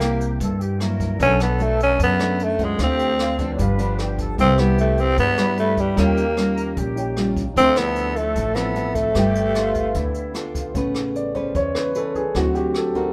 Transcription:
Already playing: upright bass C2, nylon-string guitar C3, tenor saxophone A#3, grand piano E4 A#4 C5 F#5, flute section G4
0.00 nylon-string guitar A#3 E4, cross-stick, closed hi-hat
0.21 closed hi-hat
0.40 upright bass G2, nylon-string guitar G2, flute section A4, kick, closed hi-hat
0.60 flute section G4, closed hi-hat
0.79 nylon-string guitar F#3 A#3 E4, flute section A#4, cross-stick, closed hi-hat
1.00 kick, closed hi-hat
1.16 upright bass B1, nylon-string guitar B2 F#3 A3, grand piano D4 A4, flute section A4, kick, closed hi-hat
1.20 tenor saxophone C#4, nylon-string guitar D4, grand piano B4 F#5
1.40 tenor saxophone B3, cross-stick, closed hi-hat
1.59 nylon-string guitar F#3 A3 D4, tenor saxophone A3, closed hi-hat
1.80 tenor saxophone C#4, closed hi-hat
1.99 upright bass F#2, nylon-string guitar F#2, tenor saxophone B3, kick, closed hi-hat
2.19 nylon-string guitar F#3 A3 D4, cross-stick, closed hi-hat
2.39 closed hi-hat
2.43 tenor saxophone A3
2.57 nylon-string guitar A3 C4 F4, grand piano D4 A4 B4 F#5, kick, closed hi-hat
2.64 tenor saxophone G#3
2.76 upright bass D2, nylon-string guitar D3, grand piano D4 A4 C5, flute section G4, kick, cross-stick, closed hi-hat
2.82 tenor saxophone C4, grand piano F5
2.99 closed hi-hat
3.18 flute section F4, cross-stick, closed hi-hat
3.38 nylon-string guitar F3 B3 D4, flute section A4, kick, closed hi-hat
3.51 flute section C#5
3.55 upright bass G1, nylon-string guitar G2, grand piano D4 G4 B4, flute section B4, kick, closed hi-hat
3.62 grand piano F5
3.79 nylon-string guitar F3 B3 D4, closed hi-hat
3.99 flute section G4, cross-stick, closed hi-hat
4.18 flute section A4, kick, closed hi-hat
4.36 upright bass C2, nylon-string guitar C3 G3 B3 E4, grand piano G4 B4, flute section G4, kick, closed hi-hat
4.40 tenor saxophone C4, grand piano E5
4.58 nylon-string guitar G3 B3 E4, tenor saxophone B3, cross-stick, closed hi-hat
4.78 tenor saxophone A3, closed hi-hat
4.98 tenor saxophone C4, closed hi-hat
5.17 nylon-string guitar G2, upright bass G2, tenor saxophone B3, flute section B4, kick, closed hi-hat
5.37 nylon-string guitar G3 B3 E4, cross-stick, closed hi-hat
5.57 tenor saxophone A3, closed hi-hat
5.77 tenor saxophone G3, kick, closed hi-hat
5.95 upright bass D#2, nylon-string guitar D#3 G3 C#4 F4, grand piano D#4 G4 C#5, flute section G4, kick, cross-stick, closed hi-hat
5.99 tenor saxophone A#3, grand piano F5
6.17 closed hi-hat
6.37 nylon-string guitar G3 C#4 F4, flute section A#4, cross-stick, closed hi-hat
6.57 closed hi-hat
6.76 upright bass A#1, nylon-string guitar A#2, flute section G4, kick, closed hi-hat
6.95 grand piano D#4 G4 C#5 G5, closed hi-hat
7.17 nylon-string guitar G3 C#4 F4, cross-stick, closed hi-hat
7.37 kick, closed hi-hat
7.54 upright bass D2, nylon-string guitar D3 F3, tenor saxophone C4, grand piano D4, flute section A4, kick, closed hi-hat
7.58 nylon-string guitar C4 E4, grand piano E5 C6
7.76 nylon-string guitar F3 E4, tenor saxophone B3, cross-stick, closed hi-hat
7.96 closed hi-hat
8.16 tenor saxophone A3, closed hi-hat
8.36 upright bass A1, nylon-string guitar A2, kick, closed hi-hat
8.55 nylon-string guitar F3 C4 E4, tenor saxophone B3, cross-stick, closed hi-hat
8.75 nylon-string guitar F3 C4 E4, closed hi-hat
8.95 tenor saxophone A3, kick, closed hi-hat
9.12 upright bass G1, nylon-string guitar G3 B3 A4, grand piano G4 A4 B4, flute section G4, kick, cross-stick, closed hi-hat
9.16 nylon-string guitar F4, grand piano G5
9.35 closed hi-hat
9.54 nylon-string guitar B3 A4, flute section F4, cross-stick, closed hi-hat
9.75 kick, closed hi-hat
9.94 upright bass D2, nylon-string guitar D3, flute section E4, kick, closed hi-hat
10.14 closed hi-hat
10.34 nylon-string guitar B3 F4 A4, flute section D4, cross-stick, closed hi-hat
10.55 flute section F4, kick, closed hi-hat
10.74 upright bass A1, grand piano C#3 B3, nylon-string guitar A3 C#4 G#4 B4, kick, closed hi-hat
10.95 cross-stick, closed hi-hat
11.15 grand piano D5, closed hi-hat
11.35 nylon-string guitar C#4 G#4 B4, grand piano C5, kick, closed hi-hat
11.55 upright bass E2, nylon-string guitar E3, grand piano C#5, kick, closed hi-hat
11.75 grand piano B4, cross-stick, closed hi-hat
11.95 nylon-string guitar C#4 G#4 B4, grand piano A4, closed hi-hat
12.15 grand piano G#4, kick, closed hi-hat
12.35 upright bass D2, nylon-string guitar D3 C4 D#4 F#4, grand piano F#3 C4 F#4, kick, cross-stick, closed hi-hat
12.55 grand piano G4, closed hi-hat
12.74 grand piano A4, cross-stick, closed hi-hat
12.95 nylon-string guitar C4 D#4 F#4, grand piano A#4, kick, closed hi-hat

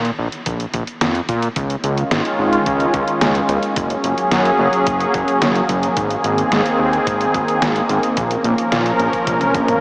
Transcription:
Already playing: analog synth bass A#2
0.05 closed hi-hat
0.19 analog synth bass A#1
0.32 closed hi-hat
0.46 analog synth bass A#1, kick, closed hi-hat
0.60 closed hi-hat
0.74 analog synth bass A#1, kick, closed hi-hat
0.87 closed hi-hat
1.01 analog synth bass F2, snare, closed hi-hat
1.15 closed hi-hat
1.29 analog synth bass A#2, kick, closed hi-hat
1.42 closed hi-hat
1.56 analog synth bass C#2, analog synth pad D#3 G#3 C#4 F4, kick, closed hi-hat
1.70 closed hi-hat
1.84 analog synth bass C#2, closed hi-hat
1.98 closed hi-hat
2.11 analog synth bass G#1, snare, closed hi-hat
2.25 closed hi-hat
2.39 analog synth bass G#1
2.53 closed hi-hat
2.66 analog synth bass C#2, kick, closed hi-hat
2.80 closed hi-hat
2.94 analog synth bass C#2, kick, closed hi-hat
3.08 closed hi-hat
3.21 analog synth bass C#2, snare, closed hi-hat
3.35 closed hi-hat
3.49 analog synth bass C#2, closed hi-hat
3.63 closed hi-hat
3.76 analog synth bass F#1, analog synth pad F#3 A#3 C#4 G#4, kick, closed hi-hat
3.90 closed hi-hat
4.04 analog synth bass F#1, closed hi-hat
4.18 closed hi-hat
4.31 analog synth bass F#2, snare, closed hi-hat
4.45 closed hi-hat
4.59 analog synth bass F#1
4.73 closed hi-hat
4.87 analog synth bass F#1, kick, closed hi-hat
5.00 closed hi-hat
5.14 analog synth bass F#1, kick, closed hi-hat
5.28 closed hi-hat
5.42 analog synth bass F#1, snare, closed hi-hat
5.55 closed hi-hat
5.69 analog synth bass F#1, kick, closed hi-hat
5.83 closed hi-hat
5.97 analog synth bass G#1, analog synth pad D#3 C4 G#4, kick, closed hi-hat
6.10 closed hi-hat
6.24 analog synth bass G#1, closed hi-hat
6.38 closed hi-hat
6.52 analog synth bass G#2, snare, closed hi-hat
6.66 closed hi-hat
6.79 analog synth bass D#2
6.93 closed hi-hat
7.07 analog synth bass G#1, kick, closed hi-hat
7.21 closed hi-hat
7.34 analog synth bass G#1, kick, closed hi-hat
7.48 closed hi-hat
7.62 analog synth bass G#1, snare, closed hi-hat
7.76 closed hi-hat
7.89 analog synth bass G#1, closed hi-hat
8.03 closed hi-hat
8.17 analog synth bass A#1, analog synth pad F3 C#4 A#4, kick, closed hi-hat
8.31 closed hi-hat
8.44 analog synth bass A#1, closed hi-hat
8.58 closed hi-hat
8.72 analog synth bass A#2, snare, closed hi-hat
8.86 closed hi-hat
8.99 analog synth bass A#1, closed hi-hat
9.13 kick, closed hi-hat
9.27 analog synth bass A#1, kick, closed hi-hat, high tom
9.41 closed hi-hat, high tom
9.54 analog synth bass A#1, kick, closed hi-hat
9.68 closed hi-hat, mid tom

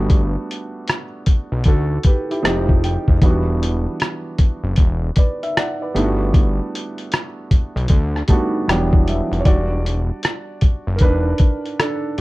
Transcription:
Already playing: analog synth bass G1, felt piano G3 A3 B3 D4 F#4
0.10 kick, closed hi-hat
0.51 closed hi-hat
0.88 cross-stick, closed hi-hat
1.26 kick, closed hi-hat
1.52 analog synth bass B1
1.64 analog synth bass D2, kick, closed hi-hat
1.68 felt piano F#4 A4
2.03 felt piano G4 B4, kick, closed hi-hat
2.31 felt piano E4 G4, closed hi-hat
2.42 analog synth bass F1, felt piano F3 G#3 C4 D#4 G4 D#5, cross-stick, closed hi-hat
2.69 kick
2.84 felt piano G5, closed hi-hat
3.08 analog synth bass F1, kick
3.21 analog synth bass E1, felt piano E3 F#3 B3 D4 F#4, kick, closed hi-hat
3.28 felt piano G3
3.63 closed hi-hat
4.00 cross-stick, closed hi-hat
4.38 kick, closed hi-hat
4.64 analog synth bass F#1
4.76 analog synth bass E1, kick, closed hi-hat
5.16 felt piano B4 D5, kick, closed hi-hat
5.43 felt piano E5, closed hi-hat
5.57 felt piano D5 F#5, cross-stick, closed hi-hat
5.82 felt piano B4 D5
5.94 analog synth bass G1, felt piano G3 A3 B3 D4 E4, closed hi-hat
6.05 felt piano F#4
6.34 kick, closed hi-hat
6.75 closed hi-hat
6.98 closed hi-hat
7.12 cross-stick, closed hi-hat
7.51 kick, closed hi-hat
7.76 analog synth bass B1, closed hi-hat
7.88 analog synth bass D2, kick, closed hi-hat
8.16 cross-stick
8.28 felt piano G3 A3 B3 D4 A5, kick, closed hi-hat
8.32 felt piano F#4
8.68 analog synth bass E1, felt piano E3 F#3 G3 B3 D4 G5, cross-stick, closed hi-hat
8.93 kick
9.08 felt piano E5, closed hi-hat
9.31 analog synth bass F1, closed hi-hat
9.40 felt piano C#5
9.45 analog synth bass E1, felt piano G3 D4 F#4 D5, kick, closed hi-hat
9.86 closed hi-hat
10.23 cross-stick, closed hi-hat
10.61 kick, closed hi-hat
10.87 analog synth bass F#1
10.96 felt piano A#4, closed hi-hat
11.01 analog synth bass E1, felt piano D4 B4, kick
11.38 kick, closed hi-hat
11.66 closed hi-hat
11.80 felt piano D4 A4, cross-stick, closed hi-hat

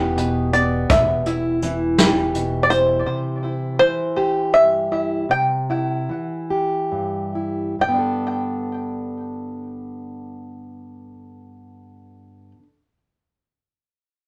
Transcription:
Already playing: upright bass E1, steel-string acoustic guitar E2 E3 B3 G4, five-string banjo B4
0.16 steel-string acoustic guitar B2, closed hi-hat
0.53 steel-string acoustic guitar B3, five-string banjo D5, closed hi-hat
0.90 upright bass E1, five-string banjo E5, kick, closed hi-hat
1.26 steel-string acoustic guitar E4, closed hi-hat
1.62 steel-string acoustic guitar E3, closed hi-hat
1.98 steel-string acoustic guitar G4, snare, closed hi-hat
2.34 steel-string acoustic guitar B2, closed hi-hat
2.63 five-string banjo D5
2.70 steel-string acoustic guitar E4, five-string banjo C5, closed hi-hat
3.06 steel-string acoustic guitar C3
3.44 steel-string acoustic guitar E4
3.79 steel-string acoustic guitar E3, five-string banjo C5
4.17 steel-string acoustic guitar G4
4.53 steel-string acoustic guitar G2, five-string banjo E5
4.92 steel-string acoustic guitar E4
5.29 steel-string acoustic guitar C3, five-string banjo G5
5.70 steel-string acoustic guitar E4
6.09 steel-string acoustic guitar E3
6.50 steel-string acoustic guitar G4
6.92 steel-string acoustic guitar G2
7.35 steel-string acoustic guitar E4
7.79 steel-string acoustic guitar G2, five-string banjo G5
7.84 steel-string acoustic guitar D3
7.89 steel-string acoustic guitar B3
7.94 steel-string acoustic guitar D4
7.99 steel-string acoustic guitar A4

